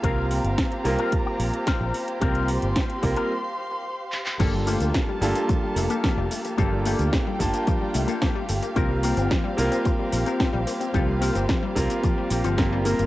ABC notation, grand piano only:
X:1
M:4/4
L:1/8
Q:1/4=110
K:Gm
V:1 name="Grand piano"
[G,B,CFB]3 [G,B,CFB]4- [G,B,CFB] | [G,B,CFB]3 [G,B,CFB] z4 | [G,B,DFA]3 [G,B,DFA]4- [G,B,DFA] | [G,B,DFA]3 [G,B,DFa]4- [G,B,DFa] |
[G,B,CFB]3 [G,B,CFB]4- [G,B,CFB] | [G,B,CF]3 [G,B,CFB]3 [G,B,CFB] [G,B,CFB] |]